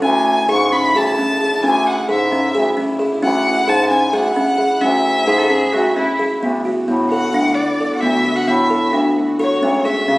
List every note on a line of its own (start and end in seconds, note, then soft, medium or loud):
0.00 0.44 D2 medium
0.00 6.38 C#3 medium
0.00 6.38 D3 medium
0.00 0.34 C#4 medium
0.00 6.38 E4 medium
0.00 0.51 G#5 medium
0.00 0.22 A5 medium
0.49 0.90 G#2 medium
0.49 0.65 G#4 medium
0.49 0.74 C#6 medium
0.72 0.88 C#4 medium
0.72 0.98 B5 medium
0.95 1.15 D2 medium
0.95 1.11 G#4 medium
0.95 1.64 A5 medium
1.19 1.34 C#4 medium
1.41 1.57 G#4 medium
1.63 2.04 D2 medium
1.63 1.95 C#4 medium
1.63 1.89 G#5 medium
1.87 2.09 F#5 medium
2.09 2.50 G#2 medium
2.09 2.25 G#4 medium
2.09 2.58 E5 medium
2.32 2.48 C#4 medium
2.55 2.75 D2 medium
2.55 2.70 G#4 medium
2.77 2.93 C#4 medium
2.99 3.15 G#4 medium
3.23 3.63 D2 medium
3.23 3.54 C#4 medium
3.23 3.71 F#5 medium
3.68 4.08 G#2 medium
3.68 3.83 G#4 medium
3.68 3.90 A5 medium
3.90 4.06 C#4 medium
3.90 4.15 G#5 medium
4.13 4.33 D2 medium
4.13 4.29 G#4 medium
4.13 4.83 F#5 medium
4.36 4.52 C#4 medium
4.58 4.74 G#4 medium
4.81 5.22 D2 medium
4.81 5.13 C#4 medium
4.81 6.19 E5 medium
5.26 5.67 G#2 medium
5.26 5.40 G#4 medium
5.26 5.43 G#4 medium
5.38 5.51 A4 medium
5.50 5.66 C#4 medium
5.50 5.74 G#4 medium
5.73 5.93 D2 medium
5.73 5.95 F#4 medium
5.73 5.89 G#4 medium
5.95 6.12 C#4 medium
5.95 6.39 E4 medium
6.19 6.35 G#4 medium
6.41 6.62 D2 medium
6.41 9.59 D3 medium
6.41 9.59 B3 medium
6.41 6.58 B3 medium
6.41 9.59 E4 medium
6.41 10.18 F#4 medium
6.65 6.81 F#4 medium
6.88 7.29 A2 medium
6.88 7.04 B3 medium
7.11 7.27 A4 medium
7.11 7.56 F#5 medium
7.34 7.55 D2 medium
7.34 7.66 D4 medium
7.55 7.95 D5 medium
7.80 7.96 A4 medium
7.95 8.02 F#5 medium
8.01 8.23 D2 medium
8.01 8.18 B3 medium
8.01 8.37 E5 medium
8.25 8.41 F#4 medium
8.36 8.49 F#5 medium
8.48 8.89 A2 medium
8.48 8.64 B3 medium
8.48 9.00 E5 medium
8.70 8.86 A4 medium
8.93 9.14 D2 medium
8.93 9.25 D4 medium
9.39 9.55 A4 medium
9.39 9.87 C#5 medium
9.62 9.82 D2 medium
9.62 10.18 G#3 medium
9.62 10.18 A3 medium
9.62 9.78 C#4 medium
9.85 10.01 G#4 medium
9.85 10.18 E5 medium
10.08 10.18 C#3 medium
10.08 10.18 C#4 medium